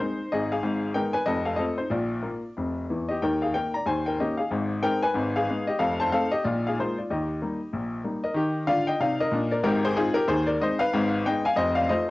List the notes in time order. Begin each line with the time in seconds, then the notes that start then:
0.00 G#3 C4 D#4 C5
0.32 G#1 G#2 G#4 D#5
0.52 G#4 F5
0.63 G#1 G#2
0.94 G#3 B3 D#4 A#4 G5
1.13 B4 G#5
1.26 F1 F2 A4 D#5
1.45 A4 F5
1.56 A3 C4 F4 A4 D#5
1.78 D#4 C5
1.90 A#1 A#2 F4 D5
2.23 A#3 F4
2.57 F1 F2
2.90 E2 E3
3.08 G4 D#5
3.22 D#2 D#3 A#4 G5
3.42 G#4 F5
3.54 A#3 D#4 A#4 G5
3.74 D5 A#5
3.86 D#2 D#3 C5 G#5
4.06 A#4 G5
4.20 A#3 C#4 D#4 G4 D#5
4.37 G#4 F5
4.51 G#1 G#2
4.83 G#3 C4 D#4 A#4 G5
5.02 B4 G#5
5.14 G#1 G#2
5.36 G#4 F5
5.49 G#3 B3 D#4
5.67 G4 D#5
5.79 F1 F2 A4 F5
6.00 C5 A5
6.12 A3 C4 D#4 A4 F5
6.32 G4 D#5
6.44 A#1 A#2 F4 D5
6.67 G#4 F5
6.80 G#3 A#3 F4 C5
6.98 F4 D5
7.10 D#2 D#3 G4 D#5
7.42 G3 A#3 D#4
7.73 A#1 A#2
8.04 G3 A#3 D#4
8.24 A#4 D#5
8.34 D#3 G4
8.67 D3 F4 D5 F5
8.87 D#5 G5
9.00 C3 D#4 D5 F5
9.20 A#4 D#5
9.32 A#2 D4
9.51 A#4 D5
9.63 G#1 G#2 G4 A#4
9.85 G#4 C5
9.97 G#3 C4 D#4 F4 G#4
10.14 G4 A#4
10.28 D#2 D#3 G#4 C5
10.47 A#4 D5
10.61 G#3 C4 D#4 C5 D#5
10.79 B4 F5
10.93 G#1 G#2
11.26 G#3 B3 D#4 D#5 G5
11.45 F5 G#5
11.56 F1 F2 C5 D#5
11.75 D5 F5
11.89 A3 C4 F4 C5 D#5